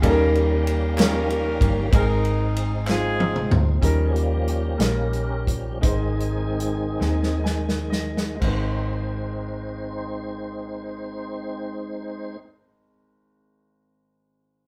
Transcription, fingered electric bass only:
0.03 1.57 D#2 loud
1.61 1.90 G1 medium
1.93 3.46 G#1 loud
3.51 3.80 D2 medium
3.83 4.75 D#2 medium
4.80 5.79 A#1 medium
5.83 6.97 G#1 medium
7.01 8.38 D#2 medium
8.41 12.37 G#1 medium

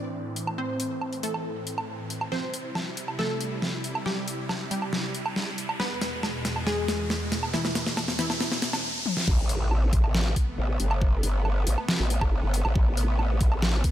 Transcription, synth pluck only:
0.00 0.50 D4 medium
0.00 0.50 D5 loud
0.58 1.15 C4 medium
0.58 1.15 C5 medium
1.23 2.23 A3 medium
1.23 2.23 A4 medium
2.32 2.70 C4 medium
2.32 2.70 C5 loud
3.19 3.97 A3 medium
3.19 3.97 A4 loud
4.06 4.63 G3 medium
4.06 4.63 G4 medium
4.71 5.71 G3 medium
4.71 5.71 G4 medium
5.80 6.18 B3 medium
5.80 6.18 B4 medium
6.67 7.45 G#3 medium
6.67 7.45 G#4 loud
7.54 8.10 E3 medium
7.54 8.10 E4 medium
8.19 8.84 E3 medium
8.19 8.84 E4 medium

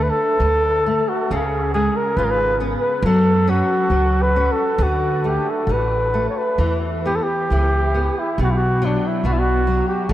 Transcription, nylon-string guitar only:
0.00 0.39 D3 medium
0.00 0.40 A3 medium
0.41 0.85 D3 medium
0.86 1.30 A3 soft
1.31 3.00 C#3 medium
1.74 2.16 G#3 soft
2.18 2.60 F4 medium
2.60 3.02 B3 medium
3.06 3.90 F#3 medium
3.47 3.90 C#4 medium
3.91 4.33 F#3 medium
4.36 4.78 C#4 medium
4.80 5.68 D3 medium
5.24 5.67 A3 soft
5.69 6.12 D3 medium
6.14 6.58 A3 soft
6.59 7.50 E3 medium
7.06 7.49 B3 soft
7.52 7.94 E3 medium
7.94 8.37 B3 soft
8.39 9.24 B2 medium
8.82 9.23 F#3 medium
9.25 9.66 B2 medium
9.67 10.09 F#3 soft

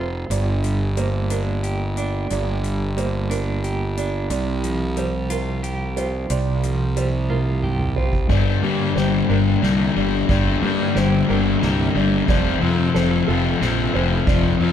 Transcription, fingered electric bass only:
0.00 0.27 F1 soft
0.30 2.26 G1 soft
2.31 4.27 G1 medium
4.30 6.26 C2 medium
6.30 8.26 C2 medium
8.30 8.55 G1 medium
8.63 8.89 G2 medium
8.96 9.22 G1 medium
9.29 9.55 G1 medium
9.63 9.89 C2 medium
9.96 10.22 G1 medium
10.29 10.55 G1 medium
10.63 10.88 G2 medium
10.96 11.22 G1 medium
11.29 11.55 G1 medium
11.63 11.88 C2 medium
11.96 12.21 G1 medium
12.28 12.54 F1 medium
12.62 12.88 F2 medium
12.95 13.21 F1 medium
13.28 13.54 F1 medium
13.61 13.87 A#1 medium
13.94 14.20 F1 medium
14.27 14.53 F1 medium
14.60 14.72 F2 medium

